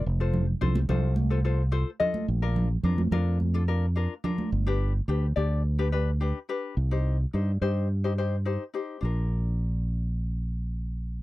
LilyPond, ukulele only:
\new Staff \with { instrumentName = "Ukulele" } { \time 4/4 \key bes \major \tempo 4 = 107 r16 <f' a' c''>8 r16 <f' a' c''>16 r16 <f' a' c''>8 r16 <f' a' c''>16 <f' a' c''>16 r16 <f' a' c''>16 r16 <f' a' ees''>8 | r16 <d' f' bes'>8 r16 <d' f' bes'>16 r16 <d' f' bes'>8 r16 <d' f' a'>16 <d' f' bes'>16 r16 <d' f' bes'>16 r16 <d' f' bes'>8 | r16 <d' g' b'>8 r16 <d' g' b'>16 r16 <d' g' d''>8 r16 <d' g' b'>16 <d' g' b'>16 r16 <d' g' b'>16 r16 <d' g' b'>8 | r16 <ees' g' c''>8 r16 <ees' g' c''>16 r16 <ees' g' c''>8 r16 <ees' g' c''>16 <ees' g' c''>16 r16 <ees' g' c''>16 r16 <ees' g' c''>8 |
<d' f' bes'>1 | }